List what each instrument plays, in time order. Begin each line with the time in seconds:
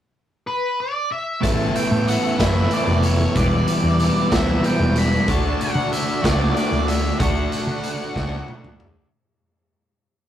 0.47 lead electric guitar B4
0.80 lead electric guitar D5
1.12 lead electric guitar E5
1.42 picked electric bass A1, overdriven electric guitar A2 E3 A3 B3 E4, transistor combo organ B3 E4 A4 E5, lead electric guitar A5, kick, closed hi-hat
1.76 lead electric guitar G5, closed hi-hat
1.91 picked electric bass A2
2.08 lead electric guitar F#5, closed hi-hat
2.38 picked electric bass F#1, overdriven electric guitar A2 E3 A3 B3 E4, lead electric guitar E5, kick, snare, closed hi-hat
2.71 lead electric guitar D5, closed hi-hat
2.88 picked electric bass F1
3.03 lead electric guitar C#5, closed hi-hat
3.34 picked electric bass E1, overdriven electric guitar E2 B2 E3 G3 B3 E4, transistor combo organ G4 D5, lead electric guitar D5, kick, closed hi-hat
3.68 closed hi-hat
3.84 picked electric bass E2
4.00 closed hi-hat
4.30 picked electric bass D2, overdriven electric guitar E2 B2 E3 G3 B3 E4, lead electric guitar E5, kick, snare, closed hi-hat
4.64 lead electric guitar G5, closed hi-hat
4.80 picked electric bass E1
4.96 lead electric guitar B5, closed hi-hat
5.26 picked electric bass D2, overdriven electric guitar D3 A3 D4, transistor combo organ A3 D4 F#4, lead electric guitar A5, kick, closed hi-hat
5.30 overdriven electric guitar F#4
5.61 lead electric guitar F#5, closed hi-hat
5.75 picked electric bass D3
5.92 lead electric guitar E5, closed hi-hat
6.22 picked electric bass C#2, overdriven electric guitar A3 D4 F#4, lead electric guitar D5, kick, snare, closed hi-hat
6.26 overdriven electric guitar D3
6.55 lead electric guitar D5, closed hi-hat
6.72 picked electric bass D2
6.87 lead electric guitar E5, closed hi-hat
7.18 picked electric bass D2, overdriven electric guitar D3 A3 D4 F#4, lead electric guitar F#5, kick, closed hi-hat
7.52 closed hi-hat
7.67 picked electric bass D3
7.83 closed hi-hat
8.14 picked electric bass C#2, overdriven electric guitar A3 D4 F#4, kick, snare
8.19 overdriven electric guitar D3
8.48 high tom
8.64 picked electric bass D2, mid tom
8.80 mid tom